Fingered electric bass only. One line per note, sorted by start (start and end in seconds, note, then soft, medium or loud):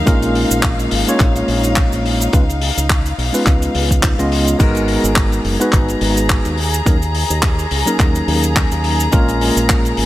0.07 0.44 A#1 medium
0.51 0.86 A#1 medium
0.92 1.03 G#1 medium
1.20 1.41 A#1 loud
1.48 1.85 A#1 medium
1.92 2.27 A#1 medium
2.33 2.70 C#2 loud
2.77 3.12 C#2 medium
3.18 3.29 B1 medium
3.47 3.67 C#2 loud
3.75 4.11 C#2 loud
4.19 4.54 C#2 medium
4.60 4.96 G#1 medium
5.04 5.39 G#1 medium
5.45 5.56 F#1 medium
5.73 5.94 G#1 medium
6.01 6.38 G#1 loud
6.45 6.80 D#2 medium
6.86 7.23 D#2 loud
7.30 7.65 D#2 medium
7.71 7.82 C#2 medium
8.00 8.20 D#2 medium
8.28 8.64 D#2 loud
8.71 9.06 D#2 medium
9.13 9.49 A#1 loud
9.57 9.91 A#1 loud
9.97 10.06 G#1 medium